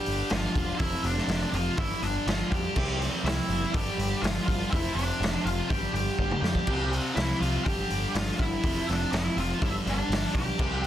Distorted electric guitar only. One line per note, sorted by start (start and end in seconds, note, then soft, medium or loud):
0.00 0.78 G2 medium
0.00 0.79 D3 loud
0.00 0.79 G3 loud
0.79 1.76 F2 loud
0.79 1.77 C3 loud
0.79 1.77 F3 loud
1.77 2.74 G2 medium
1.77 2.74 D3 loud
1.77 2.75 G3 loud
2.75 3.72 C3 loud
2.75 3.72 G3 loud
2.75 3.73 C4 loud
3.72 4.69 G2 medium
3.72 4.70 D3 loud
3.72 4.71 G3 loud
4.71 5.68 F2 loud
4.71 5.69 C3 loud
4.71 5.69 F3 loud
5.68 6.66 G2 medium
5.68 6.66 D3 medium
5.68 6.67 G3 loud
6.67 7.64 C3 loud
6.67 7.65 G3 loud
6.67 7.66 C4 loud
7.65 8.61 G2 medium
7.65 8.63 D3 loud
7.65 8.63 G3 loud
8.62 9.59 F2 medium
8.62 9.60 C3 medium
8.62 9.61 F3 loud
9.59 10.57 G2 loud
9.59 10.57 D3 loud
9.59 10.58 G3 loud
10.57 10.87 C3 loud
10.57 10.87 G3 loud
10.57 10.87 C4 loud